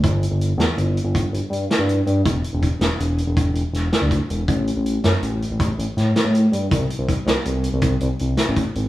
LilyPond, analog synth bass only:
\new Staff \with { instrumentName = "Analog synth bass" } { \clef bass \time 12/8 \key d \mixolydian \tempo 4. = 108 g,,8. g,,8. e,16 r16 g,,8. g,,8. g,,16 r16 g,8 r16 g,8. g,8 | e,,8 r16 e,,8 r16 e,,16 r16 e,,8. e,,8. e,,16 r16 e,,8 r16 d,8 r16 e,,8 | a,,8. a,,8. fis,16 r16 a,,8. a,,8. a,,16 r16 a,8 r16 a,8. g,8 | c,8 r16 c,8 r16 c,16 r16 c,8. c,8. c,16 r16 c,8 r16 a,,8 r16 aes,,8 | }